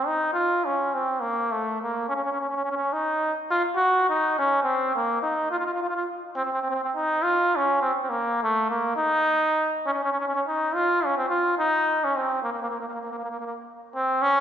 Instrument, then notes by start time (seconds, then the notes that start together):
trombone
0.07 D#4
0.33 F4
0.65 C#4
0.94 C4
1.20 A#3
1.52 A3
1.82 A#3
2.09 C#4
2.15 C#4
2.25 C#4
2.32 C#4
2.41 C#4
2.50 C#4
2.56 C#4
2.65 C#4
2.71 C#4
2.77 C#4
2.93 D#4
3.51 F4
3.76 F#4
4.09 D#4
4.39 C#4
4.63 C4
4.96 A#3
5.22 D#4
5.51 F4
5.59 F4
5.66 F4
5.74 F4
5.83 F4
5.89 F4
5.96 F4
6.36 C4
6.45 C4
6.52 C4
6.62 C4
6.70 C4
6.75 C4
6.84 C4
6.95 D#4
7.24 F4
7.56 C#4
7.82 C4
8.02 C4
8.10 A#3
8.43 A3
8.70 A#3
8.96 D#4
9.86 C#4
9.93 C#4
10.04 C#4
10.12 C#4
10.20 C#4
10.27 C#4
10.35 C#4
10.47 D#4
10.75 F4
11.05 C#4
11.17 C4
11.30 F4
11.58 D#4
12.04 C#4
12.16 C4
12.43 A#3
12.53 A#3
12.63 A#3
12.70 A#3
12.80 A#3
12.88 A#3
12.93 A#3
13.04 A#3
13.12 A#3
13.18 A#3
13.24 A#3
13.30 A#3
13.40 A#3
13.46 A#3
13.95 C4
14.22 C#4